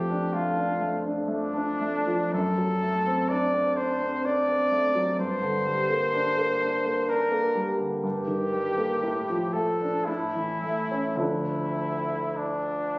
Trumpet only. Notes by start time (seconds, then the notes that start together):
Already playing: G4
0.33 F4
1.28 D4
2.33 A4
3.29 D5
3.77 C5
4.25 D5
5.20 C5
7.10 A#4
8.02 G4
9.53 A4
10.06 E4
11.19 E4
12.37 D4